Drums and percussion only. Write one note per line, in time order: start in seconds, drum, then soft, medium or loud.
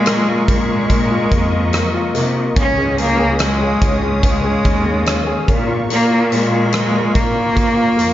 0.06 cross-stick loud
0.06 closed hi-hat medium
0.48 kick medium
0.48 closed hi-hat medium
0.90 kick medium
0.90 closed hi-hat medium
1.32 kick medium
1.32 closed hi-hat medium
1.73 cross-stick loud
1.73 closed hi-hat medium
2.15 cross-stick soft
2.15 closed hi-hat medium
2.56 kick loud
2.56 closed hi-hat medium
2.98 closed hi-hat medium
3.39 cross-stick loud
3.39 closed hi-hat medium
3.82 kick loud
3.82 closed hi-hat medium
4.23 kick medium
4.23 closed hi-hat medium
4.65 kick medium
4.65 closed hi-hat medium
5.06 cross-stick loud
5.06 closed hi-hat medium
5.48 kick medium
5.48 closed hi-hat medium
5.90 closed hi-hat medium
6.32 closed hi-hat medium
6.72 cross-stick loud
6.72 closed hi-hat medium
7.15 kick loud
7.15 closed hi-hat medium
7.57 kick medium
7.57 closed hi-hat medium
7.99 closed hi-hat medium